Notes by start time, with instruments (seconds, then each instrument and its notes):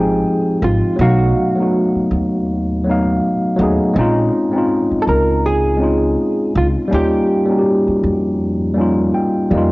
Already playing: upright bass G#1, tine electric piano F3 G#3 C4 D#4 G4 G5, hollow-body jazz guitar G#4
0.62 upright bass G#1, hollow-body jazz guitar F4
0.96 upright bass B1, tine electric piano F#3 A3 B3
1.01 tine electric piano D#4 F5, hollow-body jazz guitar F#4
1.55 tine electric piano F#3 A3 B3
1.60 tine electric piano D#4 F#4
1.95 muted upright bass stroke
2.11 upright bass D#2
2.84 tine electric piano F#3 A3 B3
2.89 tine electric piano D#4 F5
3.56 upright bass D#2, tine electric piano F#3 A3 B3
3.61 tine electric piano D#4 G#4
3.94 upright bass A#1, tine electric piano G#3 C4 C#4
3.99 tine electric piano D#4 F4
4.51 tine electric piano G#3 C4 C#4
4.56 tine electric piano D#4 F4
4.91 muted upright bass stroke
5.02 hollow-body jazz guitar A4
5.07 upright bass C#2, hollow-body jazz guitar A#4
5.46 hollow-body jazz guitar G#4
5.77 tine electric piano G#3 C4 C#4
5.82 tine electric piano D#4 F4
6.55 upright bass C#2, hollow-body jazz guitar F4
6.88 tine electric piano G3 A#3 C#4
6.92 upright bass D#2, tine electric piano D#4 F4, hollow-body jazz guitar G4
7.45 tine electric piano G3 A#3 C#4
7.50 tine electric piano D#4 F#4
7.59 tine electric piano G4
7.88 muted upright bass stroke
8.03 upright bass F2
8.74 tine electric piano G3 A#3 C#4
8.79 tine electric piano D#4 F4
9.14 tine electric piano G5
9.50 upright bass F2, tine electric piano G3 A#3 C#4 D#5
9.55 tine electric piano D#4 F4